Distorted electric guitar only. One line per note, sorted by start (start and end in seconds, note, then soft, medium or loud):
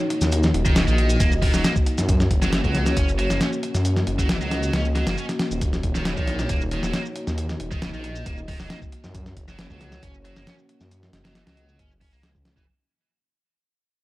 0.65 0.75 D#3 medium
0.76 0.83 C#3 medium
0.87 1.19 D#3 medium
1.20 1.30 A#3 medium
1.42 1.53 D#3 medium
1.54 1.63 F#3 medium
1.65 1.71 A#3 medium
2.42 2.52 F#3 medium
2.53 2.59 E3 medium
2.64 2.96 F#3 medium
2.97 3.07 C#4 medium
3.19 3.29 F#3 medium
3.30 3.40 A#3 medium
3.41 3.48 C#4 medium
4.19 4.28 F#3 medium
4.29 4.36 E3 medium
4.41 4.72 F#3 medium
4.73 4.84 C#4 medium
4.95 5.06 F#3 medium
5.07 5.17 A#3 medium
5.17 5.24 C#4 medium
5.95 6.05 D#3 medium
6.06 6.13 C#3 medium
6.17 6.49 D#3 medium
6.50 6.60 A#3 medium
6.72 6.82 D#3 medium
6.84 6.93 F#3 medium
6.94 7.01 A#3 medium
7.72 7.81 D#3 medium
7.83 7.89 C#3 medium
7.94 8.25 D#3 medium
8.27 8.37 A#3 medium
8.49 8.59 D#3 medium
8.60 8.69 F#3 medium
8.71 8.77 A#3 medium
9.48 9.58 F#3 medium
9.59 9.66 E3 medium
9.71 10.02 F#3 medium
10.03 10.13 C#4 medium
10.25 10.35 F#3 medium
10.37 10.46 A#3 medium
10.47 10.54 C#4 medium
11.25 11.34 F#3 medium
11.36 11.42 E3 medium
11.47 11.78 F#3 medium
11.80 11.90 C#4 medium
12.02 12.12 C#4 medium
12.13 12.22 A#3 loud
12.23 12.27 A#3 medium
12.57 12.63 E3 loud